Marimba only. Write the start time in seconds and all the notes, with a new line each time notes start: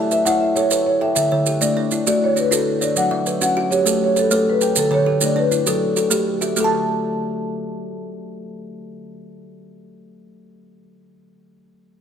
Already playing: E5
0.12 E5
0.26 F#5
0.41 E5
0.56 C#5
0.86 C#5
1.02 E5
1.15 E5
1.61 D5
2.08 D5
2.24 C#5
2.39 B4
2.53 A4
2.83 D5
2.97 F#5
3.42 F#5
3.71 C#5
4.04 C#5
4.19 A4
4.33 A4
4.50 B4
4.79 A4
4.94 C#5
5.24 D5
5.39 B4
5.68 A4